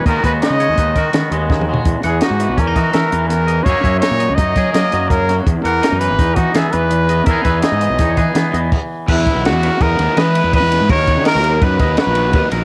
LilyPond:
<<
  \new Staff \with { instrumentName = "Clean electric guitar" } { \time 5/4 \key e \lydian \tempo 4 = 166 dis''8 dis''4 cis''8 b'8 ais'4 dis''8 gis'8 fis'8 | r8 fis''8 dis''8 b'4 dis''8 e''8 b'4 dis''8 | e''8 e''4 dis''8 cis''8 ais'4 dis''8 gis'8 fis'8 | r8 fis''8 dis''8 b'4 dis''8 e''8 b'4 dis''8 |
e''8 e''4 dis''8 cis''8 b'4 dis''8 r4 | b'4 fis'8 ais'8 b4 dis''8 b'8 dis''4 | ais'8 cis''8 ais'4 b'8 dis''8 fis'4 b'8 ais'8 | }
  \new Staff \with { instrumentName = "Trumpet" } { \time 5/4 \key e \lydian ais'8 b'8 dis''2 r2 | r8 gis'8 fis'4 ais'4 ais'4 ais'4 | cis''4 cis''4 dis''4 dis''4 ais'8. r16 | r8 ais'4 b'4 fis'8 gis'8 b'4. |
ais'8 b'8 dis''2 r2 | e'4 fis'4 ais'4 b'4 b'4 | cis''4 ais'4 b'4 b'4. r8 | }
  \new Staff \with { instrumentName = "Overdriven electric guitar" } { \time 5/4 \key e \lydian r1 r4 | r1 r4 | r1 r4 | r1 r4 |
r1 r4 | <e gis b e'>8 <gis b e'>8 <e gis b e'>4. <gis b e'>8 <e gis b e'>8 <gis b e'>8 <e gis b e'>8 <gis b e'>8 | <dis fis b dis'>8 <fis b dis'>8 <dis fis b dis'>4. <fis b dis'>8 <dis fis b dis'>8 <fis b dis'>8 <dis fis b dis'>8 <fis b dis'>8 | }
  \new Staff \with { instrumentName = "Clean electric guitar" } { \clef bass \time 5/4 \key e \lydian << { <gis b dis' fis'>4 dis'4 dis'8 fis'8 b2 | r4 dis'4 cis'16 dis'16 fis'2~ fis'8 | <fis ais dis' gis'>4 dis'4 dis'8 gis'8 ais2 | r4 dis'4 dis'8 dis'8 b2 |
<e b dis' gis'>4 dis'4 dis'8 gis'8 b4 r4 | r1 r4 | r1 r4 | } \\ { dis8 gis4 gis2 gis8 dis8 gis8 | e,8 e4 e2 e8 e,8 e8 | fis,8 fis4 fis2 fis8 fis,8 fis8 | e,8 e4 e2 e8 e,8 e8 |
e,8 e4 e2 e4.~ | e1 r4 | r1 r4 | } >> }
  \new Staff \with { instrumentName = "Fingered electric bass" } { \clef bass \time 5/4 \key e \lydian dis,16 r16 dis,8 r16 cis8 dis,16 dis,8 dis16 r16 dis16 r16 dis,4. | e,16 r16 e,8 r16 gis,8 b,,16 e,8 e16 r16 e16 r16 e,4. | fis,16 r16 fis,8 r16 ais,8 cis,16 fis,8 fis16 r16 fis16 r16 fis,4. | e,16 r16 e,8 r16 fis,8 gis,,16 e,8 e16 r16 e16 r16 e,4. |
e,16 r16 e,8 r16 gis,8 b,,16 e,8 e16 r16 e16 r16 e,8 r4 | e,8 r16 b,,8 e,8 r16 e,8 dis,16 r16 e8. e,8 e,8 gis,16 | dis,8. dis8 dis,8. fis,8 dis,8 r16 ais,,8. dis,16 r16 ais,,8 | }
  \new DrumStaff \with { instrumentName = "Drums" } \drummode { \time 5/4 <hh bd>8 <hh bd>8 <hh sn>8 hh8 <hh bd>8 <hh bd sn>8 <hh sn>8 hh8 \tuplet 3/2 { <bd sn>8 toml8 tomfh8 } | <hh bd>8 <hh sn>8 <hh sn>8 hh8 <hh bd>8 <hh bd sn>8 <hh sn>8 hh8 <hh sn>8 hh8 | <hh bd>8 <hh bd>8 <hh sn>8 hh8 <hh bd>8 <hh bd sn>8 <hh sn>8 <hh sn>8 <hh bd sn>8 <hh sn>8 | <hh bd>8 hh8 <hh sn>8 hh8 <hh bd sn>8 <hh bd>8 <hh sn>8 hh8 hh8 hh8 |
<hh bd>8 <hh bd sn>8 <hh sn>8 hh8 <hh bd sn>8 <hh bd>8 <hh sn>8 hh8 <cymc bd>4 | <cymc bd>8 <bd cymr sn>8 <cymr sn>8 <cymr sn>8 <bd cymr sn>8 <cymr sn>8 <cymr sn>8 cymr8 <bd cymr>8 <cymr sn>8 | <bd cymr>8 <bd cymr>8 <cymr sn>8 cymr8 <bd cymr sn>8 <bd cymr sn>8 <cymr sn>8 cymr8 <bd cymr sn>8 <cymr sn>8 | }
>>